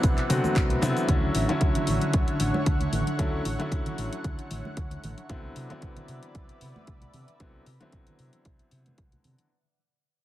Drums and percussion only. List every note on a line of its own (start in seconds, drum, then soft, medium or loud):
0.03 kick loud
0.03 closed hi-hat medium
0.03 shaker soft
0.18 clap soft
0.18 closed hi-hat soft
0.30 open hi-hat loud
0.30 shaker medium
0.44 high conga medium
0.44 shaker soft
0.56 kick loud
0.56 clap loud
0.56 closed hi-hat medium
0.56 shaker soft
0.70 closed hi-hat soft
0.70 high conga medium
0.82 open hi-hat medium
0.82 low conga medium
0.82 shaker medium
0.97 closed hi-hat soft
0.97 shaker soft
1.08 kick loud
1.08 closed hi-hat medium
1.08 high conga medium
1.35 open hi-hat medium
1.49 closed hi-hat soft
1.49 low conga medium
1.61 kick loud
1.61 closed hi-hat medium
1.75 closed hi-hat soft
1.75 low conga medium
1.87 open hi-hat medium
2.01 closed hi-hat soft
2.13 kick loud
2.13 closed hi-hat medium
2.28 closed hi-hat soft
2.40 open hi-hat loud
2.54 high conga medium
2.66 kick loud
2.66 closed hi-hat medium
2.81 closed hi-hat soft
2.81 high conga medium
2.93 open hi-hat medium
2.93 low conga medium
3.07 closed hi-hat soft
3.19 kick loud
3.19 closed hi-hat medium
3.19 high conga medium
3.45 open hi-hat medium
3.60 closed hi-hat soft
3.60 low conga medium
3.72 kick loud
3.72 closed hi-hat medium
3.86 closed hi-hat soft
3.86 low conga medium
3.98 open hi-hat medium
4.13 closed hi-hat soft
4.24 kick loud
4.24 closed hi-hat medium
4.39 closed hi-hat soft
4.51 open hi-hat medium
4.65 high conga medium
4.77 kick loud
4.77 closed hi-hat medium
4.91 closed hi-hat soft
4.91 high conga medium
5.04 open hi-hat medium
5.04 low conga medium
5.18 closed hi-hat soft
5.30 kick loud
5.30 closed hi-hat medium
5.30 high conga medium
5.56 open hi-hat medium
5.70 closed hi-hat soft
5.70 low conga medium
5.82 kick loud
5.82 closed hi-hat medium
5.96 closed hi-hat soft
5.96 low conga medium
6.08 open hi-hat medium
6.23 closed hi-hat soft
6.35 kick loud
6.35 closed hi-hat medium
6.49 closed hi-hat soft
6.61 open hi-hat medium
6.76 high conga medium
6.87 kick loud
6.87 closed hi-hat medium
7.01 closed hi-hat soft
7.01 high conga medium
7.14 open hi-hat medium
7.14 low conga medium
7.28 closed hi-hat soft
7.40 kick loud
7.40 closed hi-hat medium
7.40 high conga medium
7.66 open hi-hat medium
7.81 closed hi-hat soft
7.81 low conga medium
7.92 kick loud
7.92 closed hi-hat medium
8.07 closed hi-hat soft
8.07 low conga medium
8.19 open hi-hat medium
8.33 closed hi-hat soft
8.45 kick loud
8.45 closed hi-hat medium
8.59 closed hi-hat soft
8.71 open hi-hat medium
8.86 closed hi-hat soft
8.86 high conga medium
8.98 kick loud
8.98 closed hi-hat medium
9.12 closed hi-hat soft
9.12 high conga medium
9.24 open hi-hat medium
9.24 low conga medium
9.38 closed hi-hat soft